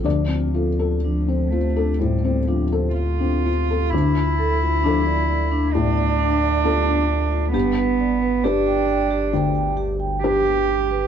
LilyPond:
<<
  \new Staff \with { instrumentName = "Vibraphone" } { \time 4/4 \key d \dorian \tempo 4 = 66 d'16 f'16 a'16 f'16 d'16 c''16 c''16 d'16 c''16 c''16 d'16 c''16 f'16 d'16 r16 f'16 | d'16 f'16 a'16 f'16 d'16 d''16 d''16 d'16 d''16 d''16 d'16 d''16 f'16 d'16 r16 f'16 | g'16 b'16 d''16 b'16 g'16 g''16 g''16 g'16 g''16 g''16 g'16 g''16 b'16 g'16 r16 b'16 | }
  \new Staff \with { instrumentName = "Felt piano" } { \time 4/4 \key d \dorian << { d''2. r4 | r1 | r1 | } \\ { d,16 c'16 f'16 a'8 c'16 f'16 a'16 a,16 c'16 f'16 a'8 c'16 f'16 a'16 | d,4 <f d' a'>4 a,4 <d' f' a'>4 | g,4 <d' g' b'>4 d,4 <d' g' b'>4 | } >> }
  \new Staff \with { instrumentName = "Cello" } { \time 4/4 \key d \dorian f4 f8 a8 g8 f8 f'4 | e'2 d'2 | b4 d'4. r8 g'4 | }
  \new Staff \with { instrumentName = "Sub bass" } { \clef bass \time 4/4 \key d \dorian d,1 | d,1 | g,,1 | }
>>